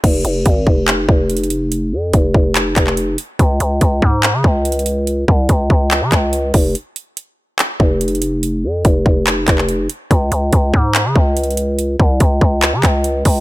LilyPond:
<<
  \new Staff \with { instrumentName = "808-style bass" } { \clef bass \time 4/4 \key des \lydian \tempo 4 = 143 f,,8 f,,8 aes,,8 f,,4 f,,4.~ | f,,8 f,8 f,,8 f,,4 f,,4 r8 | des,8 des,8 des,8 aes,8. des16 des,4.~ | des,8 c,8 des,8 des,8. des16 des,4 f,,8 |
r2 r8 f,,4.~ | f,,8 f,8 f,,8 f,,4 f,,4 r8 | des,8 des,8 des,8 aes,8. des16 des,4.~ | des,8 c,8 des,8 des,8. des16 des,4 des,8 | }
  \new DrumStaff \with { instrumentName = "Drums" } \drummode { \time 4/4 <cymc hh bd>8 hh8 <hh bd>8 bd8 <hc hh>8 bd8 \tuplet 3/2 { hh16 hh16 hh16 hh16 r16 r16 } | hh4 <hh bd>8 bd8 <hc hh>8 <hc hh bd>16 hc16 hh8 hh8 | <hh bd>8 hh8 <hh bd>8 bd8 <hc hh>8 bd8 \tuplet 3/2 { hh16 hh16 hh16 hh16 r16 r16 } | hh8 bd8 <hh bd>8 bd8 <hc hh>8 <hc hh bd>8 hh8 <hho bd>8 |
hh8 hh8 hh4 <hc hh>8 bd8 \tuplet 3/2 { hh16 hh16 hh16 hh16 r16 r16 } | hh4 <hh bd>8 bd8 <hc hh>8 <hc hh bd>16 hc16 hh8 hh8 | <hh bd>8 hh8 <hh bd>8 bd8 <hc hh>8 bd8 \tuplet 3/2 { hh16 hh16 hh16 hh16 r16 r16 } | hh8 bd8 <hh bd>8 bd8 <hc hh>8 <hc hh bd>8 hh8 <hho bd>8 | }
>>